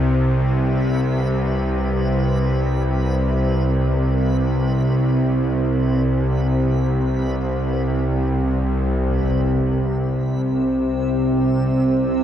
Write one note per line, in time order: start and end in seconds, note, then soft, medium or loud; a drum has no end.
0.00 9.09 C2 medium
0.00 9.09 C3 medium
0.00 9.12 B4 medium
9.09 12.24 C2 medium
9.09 12.24 C3 medium
9.09 12.24 C4 medium
9.09 12.24 E5 medium
9.09 impact medium
11.30 12.24 G4 medium